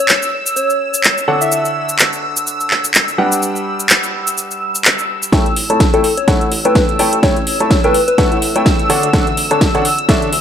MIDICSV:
0, 0, Header, 1, 6, 480
1, 0, Start_track
1, 0, Tempo, 476190
1, 1529, Time_signature, 4, 2, 24, 8
1, 10492, End_track
2, 0, Start_track
2, 0, Title_t, "Analog synth pad"
2, 0, Program_c, 0, 89
2, 0, Note_on_c, 0, 88, 81
2, 5355, Note_off_c, 0, 88, 0
2, 5367, Note_on_c, 0, 88, 83
2, 10492, Note_off_c, 0, 88, 0
2, 10492, End_track
3, 0, Start_track
3, 0, Title_t, "Soft synth lead"
3, 0, Program_c, 1, 80
3, 89, Note_on_c, 1, 73, 88
3, 286, Note_off_c, 1, 73, 0
3, 567, Note_on_c, 1, 73, 90
3, 1246, Note_off_c, 1, 73, 0
3, 1423, Note_on_c, 1, 76, 92
3, 1904, Note_off_c, 1, 76, 0
3, 5983, Note_on_c, 1, 69, 88
3, 6051, Note_off_c, 1, 69, 0
3, 6088, Note_on_c, 1, 69, 75
3, 6176, Note_off_c, 1, 69, 0
3, 6224, Note_on_c, 1, 73, 90
3, 6568, Note_off_c, 1, 73, 0
3, 6704, Note_on_c, 1, 71, 90
3, 6888, Note_off_c, 1, 71, 0
3, 7288, Note_on_c, 1, 73, 98
3, 7877, Note_off_c, 1, 73, 0
3, 7903, Note_on_c, 1, 71, 91
3, 8088, Note_off_c, 1, 71, 0
3, 8142, Note_on_c, 1, 71, 82
3, 8210, Note_off_c, 1, 71, 0
3, 8245, Note_on_c, 1, 71, 75
3, 8334, Note_off_c, 1, 71, 0
3, 10492, End_track
4, 0, Start_track
4, 0, Title_t, "Grand piano"
4, 0, Program_c, 2, 0
4, 0, Note_on_c, 2, 57, 67
4, 0, Note_on_c, 2, 64, 60
4, 0, Note_on_c, 2, 69, 63
4, 0, Note_on_c, 2, 73, 61
4, 0, Note_on_c, 2, 79, 73
4, 1264, Note_off_c, 2, 57, 0
4, 1264, Note_off_c, 2, 64, 0
4, 1264, Note_off_c, 2, 69, 0
4, 1264, Note_off_c, 2, 79, 0
4, 1265, Note_off_c, 2, 73, 0
4, 1288, Note_on_c, 2, 50, 69
4, 1288, Note_on_c, 2, 69, 62
4, 1289, Note_on_c, 2, 62, 64
4, 1289, Note_on_c, 2, 73, 62
4, 1289, Note_on_c, 2, 78, 77
4, 3184, Note_off_c, 2, 50, 0
4, 3184, Note_off_c, 2, 62, 0
4, 3184, Note_off_c, 2, 69, 0
4, 3184, Note_off_c, 2, 73, 0
4, 3184, Note_off_c, 2, 78, 0
4, 3208, Note_on_c, 2, 55, 68
4, 3208, Note_on_c, 2, 62, 65
4, 3208, Note_on_c, 2, 67, 65
4, 3208, Note_on_c, 2, 71, 63
4, 3208, Note_on_c, 2, 78, 78
4, 5343, Note_off_c, 2, 71, 0
4, 5343, Note_off_c, 2, 78, 0
4, 5344, Note_off_c, 2, 55, 0
4, 5344, Note_off_c, 2, 62, 0
4, 5344, Note_off_c, 2, 67, 0
4, 5368, Note_on_c, 2, 57, 78
4, 5368, Note_on_c, 2, 64, 73
4, 5368, Note_on_c, 2, 69, 74
4, 5368, Note_on_c, 2, 73, 76
4, 5368, Note_on_c, 2, 79, 86
4, 5489, Note_off_c, 2, 57, 0
4, 5489, Note_off_c, 2, 64, 0
4, 5489, Note_off_c, 2, 69, 0
4, 5489, Note_off_c, 2, 79, 0
4, 5490, Note_off_c, 2, 73, 0
4, 5744, Note_on_c, 2, 57, 68
4, 5744, Note_on_c, 2, 64, 58
4, 5744, Note_on_c, 2, 69, 61
4, 5744, Note_on_c, 2, 73, 61
4, 5744, Note_on_c, 2, 81, 70
4, 5906, Note_off_c, 2, 57, 0
4, 5906, Note_off_c, 2, 64, 0
4, 5906, Note_off_c, 2, 69, 0
4, 5906, Note_off_c, 2, 73, 0
4, 5906, Note_off_c, 2, 81, 0
4, 5985, Note_on_c, 2, 57, 75
4, 5985, Note_on_c, 2, 64, 73
4, 5985, Note_on_c, 2, 69, 72
4, 5985, Note_on_c, 2, 73, 71
4, 5985, Note_on_c, 2, 79, 86
4, 6077, Note_off_c, 2, 57, 0
4, 6077, Note_off_c, 2, 64, 0
4, 6077, Note_off_c, 2, 69, 0
4, 6077, Note_off_c, 2, 73, 0
4, 6077, Note_off_c, 2, 79, 0
4, 6328, Note_on_c, 2, 73, 78
4, 6329, Note_on_c, 2, 57, 89
4, 6329, Note_on_c, 2, 64, 79
4, 6329, Note_on_c, 2, 69, 78
4, 6329, Note_on_c, 2, 78, 95
4, 6509, Note_off_c, 2, 57, 0
4, 6509, Note_off_c, 2, 64, 0
4, 6509, Note_off_c, 2, 69, 0
4, 6509, Note_off_c, 2, 73, 0
4, 6509, Note_off_c, 2, 78, 0
4, 6705, Note_on_c, 2, 57, 69
4, 6705, Note_on_c, 2, 64, 66
4, 6705, Note_on_c, 2, 69, 61
4, 6705, Note_on_c, 2, 73, 61
4, 6705, Note_on_c, 2, 79, 76
4, 7024, Note_off_c, 2, 57, 0
4, 7024, Note_off_c, 2, 64, 0
4, 7024, Note_off_c, 2, 69, 0
4, 7024, Note_off_c, 2, 73, 0
4, 7024, Note_off_c, 2, 79, 0
4, 7048, Note_on_c, 2, 57, 85
4, 7048, Note_on_c, 2, 64, 77
4, 7048, Note_on_c, 2, 69, 76
4, 7048, Note_on_c, 2, 73, 76
4, 7048, Note_on_c, 2, 79, 96
4, 7228, Note_off_c, 2, 57, 0
4, 7228, Note_off_c, 2, 64, 0
4, 7228, Note_off_c, 2, 69, 0
4, 7228, Note_off_c, 2, 73, 0
4, 7228, Note_off_c, 2, 79, 0
4, 7288, Note_on_c, 2, 57, 85
4, 7288, Note_on_c, 2, 64, 74
4, 7288, Note_on_c, 2, 69, 75
4, 7289, Note_on_c, 2, 73, 73
4, 7289, Note_on_c, 2, 79, 92
4, 7410, Note_off_c, 2, 57, 0
4, 7410, Note_off_c, 2, 64, 0
4, 7410, Note_off_c, 2, 69, 0
4, 7410, Note_off_c, 2, 73, 0
4, 7410, Note_off_c, 2, 79, 0
4, 7664, Note_on_c, 2, 69, 62
4, 7664, Note_on_c, 2, 73, 63
4, 7664, Note_on_c, 2, 81, 73
4, 7665, Note_on_c, 2, 57, 69
4, 7665, Note_on_c, 2, 64, 61
4, 7826, Note_off_c, 2, 57, 0
4, 7826, Note_off_c, 2, 64, 0
4, 7826, Note_off_c, 2, 69, 0
4, 7826, Note_off_c, 2, 73, 0
4, 7826, Note_off_c, 2, 81, 0
4, 7905, Note_on_c, 2, 57, 81
4, 7905, Note_on_c, 2, 64, 76
4, 7905, Note_on_c, 2, 69, 72
4, 7905, Note_on_c, 2, 73, 72
4, 7905, Note_on_c, 2, 79, 88
4, 7997, Note_off_c, 2, 57, 0
4, 7997, Note_off_c, 2, 64, 0
4, 7997, Note_off_c, 2, 69, 0
4, 7997, Note_off_c, 2, 73, 0
4, 7997, Note_off_c, 2, 79, 0
4, 8248, Note_on_c, 2, 57, 88
4, 8248, Note_on_c, 2, 69, 82
4, 8248, Note_on_c, 2, 73, 83
4, 8248, Note_on_c, 2, 78, 96
4, 8249, Note_on_c, 2, 64, 81
4, 8428, Note_off_c, 2, 57, 0
4, 8429, Note_off_c, 2, 64, 0
4, 8429, Note_off_c, 2, 69, 0
4, 8429, Note_off_c, 2, 73, 0
4, 8429, Note_off_c, 2, 78, 0
4, 8624, Note_on_c, 2, 57, 73
4, 8624, Note_on_c, 2, 64, 64
4, 8624, Note_on_c, 2, 69, 68
4, 8624, Note_on_c, 2, 73, 68
4, 8624, Note_on_c, 2, 79, 78
4, 8943, Note_off_c, 2, 57, 0
4, 8943, Note_off_c, 2, 73, 0
4, 8943, Note_off_c, 2, 79, 0
4, 8944, Note_off_c, 2, 64, 0
4, 8944, Note_off_c, 2, 69, 0
4, 8968, Note_on_c, 2, 50, 87
4, 8968, Note_on_c, 2, 62, 77
4, 8968, Note_on_c, 2, 69, 79
4, 8968, Note_on_c, 2, 73, 81
4, 8968, Note_on_c, 2, 78, 93
4, 9148, Note_off_c, 2, 50, 0
4, 9148, Note_off_c, 2, 62, 0
4, 9148, Note_off_c, 2, 69, 0
4, 9148, Note_off_c, 2, 73, 0
4, 9148, Note_off_c, 2, 78, 0
4, 9208, Note_on_c, 2, 50, 85
4, 9208, Note_on_c, 2, 69, 77
4, 9208, Note_on_c, 2, 78, 92
4, 9209, Note_on_c, 2, 62, 78
4, 9209, Note_on_c, 2, 73, 75
4, 9330, Note_off_c, 2, 50, 0
4, 9330, Note_off_c, 2, 62, 0
4, 9330, Note_off_c, 2, 69, 0
4, 9330, Note_off_c, 2, 73, 0
4, 9330, Note_off_c, 2, 78, 0
4, 9584, Note_on_c, 2, 81, 77
4, 9585, Note_on_c, 2, 50, 68
4, 9585, Note_on_c, 2, 62, 61
4, 9585, Note_on_c, 2, 69, 62
4, 9585, Note_on_c, 2, 73, 63
4, 9746, Note_off_c, 2, 50, 0
4, 9746, Note_off_c, 2, 62, 0
4, 9746, Note_off_c, 2, 69, 0
4, 9746, Note_off_c, 2, 73, 0
4, 9746, Note_off_c, 2, 81, 0
4, 9824, Note_on_c, 2, 73, 78
4, 9825, Note_on_c, 2, 50, 82
4, 9825, Note_on_c, 2, 62, 76
4, 9825, Note_on_c, 2, 69, 73
4, 9825, Note_on_c, 2, 78, 88
4, 9917, Note_off_c, 2, 50, 0
4, 9917, Note_off_c, 2, 62, 0
4, 9917, Note_off_c, 2, 69, 0
4, 9917, Note_off_c, 2, 73, 0
4, 9917, Note_off_c, 2, 78, 0
4, 10168, Note_on_c, 2, 50, 90
4, 10168, Note_on_c, 2, 62, 83
4, 10168, Note_on_c, 2, 69, 85
4, 10168, Note_on_c, 2, 73, 83
4, 10168, Note_on_c, 2, 76, 98
4, 10348, Note_off_c, 2, 50, 0
4, 10348, Note_off_c, 2, 62, 0
4, 10348, Note_off_c, 2, 69, 0
4, 10348, Note_off_c, 2, 73, 0
4, 10348, Note_off_c, 2, 76, 0
4, 10492, End_track
5, 0, Start_track
5, 0, Title_t, "Analog synth bass"
5, 0, Program_c, 3, 38
5, 5368, Note_on_c, 3, 33, 98
5, 5910, Note_off_c, 3, 33, 0
5, 5985, Note_on_c, 3, 33, 84
5, 6053, Note_off_c, 3, 33, 0
5, 6327, Note_on_c, 3, 31, 72
5, 6497, Note_off_c, 3, 31, 0
5, 6569, Note_on_c, 3, 33, 80
5, 6871, Note_off_c, 3, 33, 0
5, 6944, Note_on_c, 3, 31, 81
5, 7091, Note_off_c, 3, 31, 0
5, 7184, Note_on_c, 3, 33, 95
5, 7712, Note_off_c, 3, 33, 0
5, 7904, Note_on_c, 3, 33, 80
5, 7973, Note_off_c, 3, 33, 0
5, 8384, Note_on_c, 3, 45, 97
5, 8625, Note_on_c, 3, 28, 101
5, 8640, Note_off_c, 3, 45, 0
5, 8912, Note_off_c, 3, 28, 0
5, 9106, Note_on_c, 3, 38, 86
5, 9174, Note_off_c, 3, 38, 0
5, 9207, Note_on_c, 3, 38, 96
5, 9750, Note_off_c, 3, 38, 0
5, 9825, Note_on_c, 3, 38, 85
5, 9893, Note_off_c, 3, 38, 0
5, 10168, Note_on_c, 3, 33, 73
5, 10337, Note_off_c, 3, 33, 0
5, 10409, Note_on_c, 3, 38, 82
5, 10492, Note_off_c, 3, 38, 0
5, 10492, End_track
6, 0, Start_track
6, 0, Title_t, "Drums"
6, 87, Note_on_c, 9, 39, 100
6, 90, Note_on_c, 9, 82, 53
6, 188, Note_off_c, 9, 39, 0
6, 191, Note_off_c, 9, 82, 0
6, 226, Note_on_c, 9, 82, 32
6, 327, Note_off_c, 9, 82, 0
6, 467, Note_on_c, 9, 82, 63
6, 567, Note_off_c, 9, 82, 0
6, 570, Note_on_c, 9, 82, 53
6, 671, Note_off_c, 9, 82, 0
6, 706, Note_on_c, 9, 82, 30
6, 807, Note_off_c, 9, 82, 0
6, 946, Note_on_c, 9, 82, 66
6, 1047, Note_off_c, 9, 82, 0
6, 1047, Note_on_c, 9, 39, 102
6, 1050, Note_on_c, 9, 82, 51
6, 1148, Note_off_c, 9, 39, 0
6, 1151, Note_off_c, 9, 82, 0
6, 1186, Note_on_c, 9, 82, 31
6, 1287, Note_off_c, 9, 82, 0
6, 1426, Note_on_c, 9, 82, 62
6, 1527, Note_off_c, 9, 82, 0
6, 1529, Note_on_c, 9, 82, 54
6, 1630, Note_off_c, 9, 82, 0
6, 1665, Note_on_c, 9, 82, 31
6, 1766, Note_off_c, 9, 82, 0
6, 1905, Note_on_c, 9, 82, 64
6, 2006, Note_off_c, 9, 82, 0
6, 2006, Note_on_c, 9, 39, 104
6, 2009, Note_on_c, 9, 82, 53
6, 2107, Note_off_c, 9, 39, 0
6, 2110, Note_off_c, 9, 82, 0
6, 2146, Note_on_c, 9, 82, 30
6, 2246, Note_off_c, 9, 82, 0
6, 2385, Note_on_c, 9, 82, 63
6, 2486, Note_off_c, 9, 82, 0
6, 2489, Note_on_c, 9, 82, 53
6, 2590, Note_off_c, 9, 82, 0
6, 2626, Note_on_c, 9, 82, 32
6, 2726, Note_off_c, 9, 82, 0
6, 2727, Note_on_c, 9, 39, 52
6, 2828, Note_off_c, 9, 39, 0
6, 2865, Note_on_c, 9, 82, 67
6, 2966, Note_off_c, 9, 82, 0
6, 2967, Note_on_c, 9, 39, 105
6, 2970, Note_on_c, 9, 82, 53
6, 3068, Note_off_c, 9, 39, 0
6, 3070, Note_off_c, 9, 82, 0
6, 3106, Note_on_c, 9, 82, 32
6, 3207, Note_off_c, 9, 82, 0
6, 3346, Note_on_c, 9, 82, 63
6, 3447, Note_off_c, 9, 82, 0
6, 3450, Note_on_c, 9, 82, 52
6, 3550, Note_off_c, 9, 82, 0
6, 3586, Note_on_c, 9, 82, 31
6, 3687, Note_off_c, 9, 82, 0
6, 3826, Note_on_c, 9, 82, 64
6, 3927, Note_off_c, 9, 82, 0
6, 3927, Note_on_c, 9, 39, 111
6, 3930, Note_on_c, 9, 82, 54
6, 4028, Note_off_c, 9, 39, 0
6, 4030, Note_off_c, 9, 82, 0
6, 4066, Note_on_c, 9, 82, 31
6, 4167, Note_off_c, 9, 82, 0
6, 4306, Note_on_c, 9, 82, 63
6, 4407, Note_off_c, 9, 82, 0
6, 4410, Note_on_c, 9, 82, 55
6, 4511, Note_off_c, 9, 82, 0
6, 4547, Note_on_c, 9, 82, 32
6, 4648, Note_off_c, 9, 82, 0
6, 4786, Note_on_c, 9, 82, 66
6, 4887, Note_off_c, 9, 82, 0
6, 4887, Note_on_c, 9, 39, 109
6, 4890, Note_on_c, 9, 82, 53
6, 4988, Note_off_c, 9, 39, 0
6, 4991, Note_off_c, 9, 82, 0
6, 5026, Note_on_c, 9, 82, 32
6, 5127, Note_off_c, 9, 82, 0
6, 5266, Note_on_c, 9, 82, 62
6, 5367, Note_off_c, 9, 82, 0
6, 5368, Note_on_c, 9, 36, 110
6, 5369, Note_on_c, 9, 38, 47
6, 5369, Note_on_c, 9, 42, 51
6, 5468, Note_off_c, 9, 36, 0
6, 5470, Note_off_c, 9, 38, 0
6, 5470, Note_off_c, 9, 42, 0
6, 5505, Note_on_c, 9, 42, 25
6, 5605, Note_off_c, 9, 42, 0
6, 5609, Note_on_c, 9, 46, 97
6, 5709, Note_off_c, 9, 46, 0
6, 5744, Note_on_c, 9, 42, 50
6, 5845, Note_off_c, 9, 42, 0
6, 5848, Note_on_c, 9, 36, 108
6, 5848, Note_on_c, 9, 38, 46
6, 5848, Note_on_c, 9, 42, 53
6, 5948, Note_off_c, 9, 36, 0
6, 5949, Note_off_c, 9, 38, 0
6, 5949, Note_off_c, 9, 42, 0
6, 5984, Note_on_c, 9, 42, 26
6, 6085, Note_off_c, 9, 42, 0
6, 6088, Note_on_c, 9, 46, 97
6, 6189, Note_off_c, 9, 46, 0
6, 6224, Note_on_c, 9, 42, 51
6, 6325, Note_off_c, 9, 42, 0
6, 6327, Note_on_c, 9, 36, 111
6, 6327, Note_on_c, 9, 38, 48
6, 6327, Note_on_c, 9, 42, 51
6, 6428, Note_off_c, 9, 36, 0
6, 6428, Note_off_c, 9, 38, 0
6, 6428, Note_off_c, 9, 42, 0
6, 6464, Note_on_c, 9, 42, 25
6, 6564, Note_off_c, 9, 42, 0
6, 6568, Note_on_c, 9, 46, 94
6, 6669, Note_off_c, 9, 46, 0
6, 6704, Note_on_c, 9, 42, 52
6, 6804, Note_off_c, 9, 42, 0
6, 6807, Note_on_c, 9, 36, 113
6, 6808, Note_on_c, 9, 38, 47
6, 6808, Note_on_c, 9, 42, 50
6, 6908, Note_off_c, 9, 36, 0
6, 6908, Note_off_c, 9, 38, 0
6, 6908, Note_off_c, 9, 42, 0
6, 6944, Note_on_c, 9, 42, 26
6, 7045, Note_off_c, 9, 42, 0
6, 7048, Note_on_c, 9, 46, 97
6, 7148, Note_off_c, 9, 46, 0
6, 7183, Note_on_c, 9, 42, 52
6, 7284, Note_off_c, 9, 42, 0
6, 7287, Note_on_c, 9, 36, 118
6, 7288, Note_on_c, 9, 38, 50
6, 7288, Note_on_c, 9, 42, 50
6, 7388, Note_off_c, 9, 36, 0
6, 7389, Note_off_c, 9, 38, 0
6, 7389, Note_off_c, 9, 42, 0
6, 7424, Note_on_c, 9, 42, 24
6, 7525, Note_off_c, 9, 42, 0
6, 7528, Note_on_c, 9, 46, 102
6, 7629, Note_off_c, 9, 46, 0
6, 7664, Note_on_c, 9, 42, 50
6, 7765, Note_off_c, 9, 42, 0
6, 7767, Note_on_c, 9, 36, 114
6, 7768, Note_on_c, 9, 38, 53
6, 7768, Note_on_c, 9, 42, 51
6, 7868, Note_off_c, 9, 36, 0
6, 7869, Note_off_c, 9, 38, 0
6, 7869, Note_off_c, 9, 42, 0
6, 7903, Note_on_c, 9, 42, 25
6, 8004, Note_off_c, 9, 42, 0
6, 8008, Note_on_c, 9, 46, 105
6, 8108, Note_off_c, 9, 46, 0
6, 8144, Note_on_c, 9, 42, 51
6, 8244, Note_off_c, 9, 42, 0
6, 8247, Note_on_c, 9, 36, 115
6, 8247, Note_on_c, 9, 38, 53
6, 8247, Note_on_c, 9, 42, 50
6, 8348, Note_off_c, 9, 36, 0
6, 8348, Note_off_c, 9, 38, 0
6, 8348, Note_off_c, 9, 42, 0
6, 8384, Note_on_c, 9, 42, 25
6, 8485, Note_off_c, 9, 42, 0
6, 8488, Note_on_c, 9, 46, 99
6, 8589, Note_off_c, 9, 46, 0
6, 8625, Note_on_c, 9, 42, 52
6, 8725, Note_off_c, 9, 42, 0
6, 8727, Note_on_c, 9, 36, 115
6, 8728, Note_on_c, 9, 38, 55
6, 8728, Note_on_c, 9, 42, 50
6, 8828, Note_off_c, 9, 36, 0
6, 8829, Note_off_c, 9, 38, 0
6, 8829, Note_off_c, 9, 42, 0
6, 8865, Note_on_c, 9, 42, 25
6, 8965, Note_off_c, 9, 42, 0
6, 8968, Note_on_c, 9, 46, 105
6, 9069, Note_off_c, 9, 46, 0
6, 9104, Note_on_c, 9, 42, 51
6, 9205, Note_off_c, 9, 42, 0
6, 9207, Note_on_c, 9, 36, 121
6, 9208, Note_on_c, 9, 38, 56
6, 9208, Note_on_c, 9, 42, 50
6, 9308, Note_off_c, 9, 36, 0
6, 9309, Note_off_c, 9, 38, 0
6, 9309, Note_off_c, 9, 42, 0
6, 9345, Note_on_c, 9, 42, 24
6, 9445, Note_off_c, 9, 42, 0
6, 9448, Note_on_c, 9, 46, 105
6, 9549, Note_off_c, 9, 46, 0
6, 9585, Note_on_c, 9, 42, 48
6, 9685, Note_off_c, 9, 42, 0
6, 9687, Note_on_c, 9, 36, 117
6, 9689, Note_on_c, 9, 38, 60
6, 9689, Note_on_c, 9, 42, 47
6, 9788, Note_off_c, 9, 36, 0
6, 9789, Note_off_c, 9, 38, 0
6, 9789, Note_off_c, 9, 42, 0
6, 9824, Note_on_c, 9, 42, 24
6, 9925, Note_off_c, 9, 42, 0
6, 9928, Note_on_c, 9, 46, 107
6, 10029, Note_off_c, 9, 46, 0
6, 10064, Note_on_c, 9, 42, 48
6, 10165, Note_off_c, 9, 42, 0
6, 10168, Note_on_c, 9, 36, 117
6, 10168, Note_on_c, 9, 38, 62
6, 10168, Note_on_c, 9, 42, 50
6, 10268, Note_off_c, 9, 36, 0
6, 10269, Note_off_c, 9, 38, 0
6, 10269, Note_off_c, 9, 42, 0
6, 10304, Note_on_c, 9, 42, 24
6, 10405, Note_off_c, 9, 42, 0
6, 10408, Note_on_c, 9, 46, 103
6, 10492, Note_off_c, 9, 46, 0
6, 10492, End_track
0, 0, End_of_file